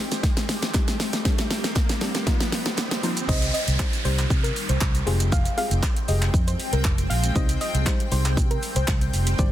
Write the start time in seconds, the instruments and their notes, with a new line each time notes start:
Already playing: ambient pad D#3 G3 C4 G4, riser
0.12 snare, closed hi-hat, shaker
0.23 kick, snare, closed hi-hat, shaker
0.37 snare, closed hi-hat, shaker
0.49 snare, open hi-hat, shaker
0.62 snare, closed hi-hat, shaker
0.74 synth pluck G3 C4 D#4 G4, kick, snare, clap, closed hi-hat, shaker
0.88 snare, closed hi-hat, shaker
1.00 snare, open hi-hat, shaker
1.13 snare, closed hi-hat, shaker
1.25 synth pluck G3 C4 D4 G4, kick, snare, closed hi-hat, shaker
1.38 snare, closed hi-hat, shaker
1.51 snare, open hi-hat, shaker
1.64 snare, closed hi-hat, shaker
1.76 kick, snare, clap, closed hi-hat, shaker
1.89 snare, closed hi-hat, shaker
2.01 synth pluck G3 C4 D4 G4, snare, open hi-hat, shaker
2.15 snare, closed hi-hat, shaker
2.26 synth pluck F3 A#3 D#4 F4, kick, snare, closed hi-hat, shaker
2.40 snare, closed hi-hat, shaker
2.52 snare, open hi-hat, shaker
2.66 snare, closed hi-hat, shaker
2.78 snare, clap, closed hi-hat, shaker
2.91 snare, closed hi-hat, shaker
3.03 synth pluck F3 A#3 D#4 F4, open hi-hat, shaker
3.17 closed hi-hat, shaker
3.28 fingered electric bass C2, ambient pad D#3 G3 C4 G5, synth pluck G3 C4 D#4 G4 C5 D#5, kick, crash, downlifter, shaker
3.42 closed hi-hat, shaker
3.54 synth pluck D#5, open hi-hat, shaker
3.68 fingered electric bass C2, closed hi-hat, shaker
3.79 synth pluck G3 C4 D#4 G4 C5, kick, clap, shaker
3.93 closed hi-hat, shaker
4.05 fingered electric bass C2, synth pluck G3 C4 D#4 G4 C5, open hi-hat, shaker
4.19 clap, closed hi-hat, shaker
4.30 fingered electric bass C3, kick, shaker
4.43 synth pluck A#4, closed hi-hat, shaker
4.56 open hi-hat, shaker
4.69 fingered electric bass C2, synth pluck C5, closed hi-hat, shaker
4.81 fingered electric bass C2, kick, clap, shaker
4.95 closed hi-hat, shaker
5.06 fingered electric bass F1, ambient pad F3 G#3, synth pluck G#3 C4 F4 G4 G#4, open hi-hat, shaker
5.20 closed hi-hat, shaker
5.32 synth pluck F5, kick, shaker
5.45 closed hi-hat, shaker
5.57 synth pluck G#3 C4 F4 G4 G#4 F5, open hi-hat, shaker
5.71 fingered electric bass F1, closed hi-hat, shaker
5.83 kick, clap, shaker
5.96 closed hi-hat, shaker
6.08 fingered electric bass F1, synth pluck G#3 C4 F4 G4 G#4 D#5, open hi-hat, shaker
6.22 clap, closed hi-hat, shaker
6.34 fingered electric bass F2, kick, shaker
6.48 synth pluck C5, closed hi-hat, shaker
6.60 open hi-hat, shaker
6.73 fingered electric bass C2, synth pluck A#4, closed hi-hat, shaker
6.84 fingered electric bass F1, kick, clap, shaker
6.98 closed hi-hat, shaker
7.10 fingered electric bass A#1, synth pluck F5, open hi-hat, shaker
7.24 closed hi-hat, shaker
7.35 fingered electric bass C2, ambient pad D#3 G3, synth pluck G3 C4 D#4 G4 C5 D#5, kick, shaker
7.49 closed hi-hat, shaker
7.61 synth pluck D#5, open hi-hat, shaker
7.74 fingered electric bass C2, closed hi-hat, shaker
7.86 synth pluck G3 C4 D#4 G4 C5, kick, clap, shaker
8.00 closed hi-hat, shaker
8.12 fingered electric bass C2, synth pluck G3 C4 D#4 G4 C5, open hi-hat, shaker
8.25 clap, closed hi-hat, shaker
8.37 fingered electric bass C3, kick, shaker
8.51 synth pluck A#4, closed hi-hat, shaker
8.63 open hi-hat, shaker
8.76 fingered electric bass C2, synth pluck C5, closed hi-hat, shaker
8.88 fingered electric bass C2, kick, clap, shaker
9.01 closed hi-hat, shaker
9.13 fingered electric bass F1, open hi-hat, shaker
9.27 closed hi-hat, shaker
9.39 fingered electric bass G1, synth pluck G3 C4 D4 G4 C5 D5, kick, shaker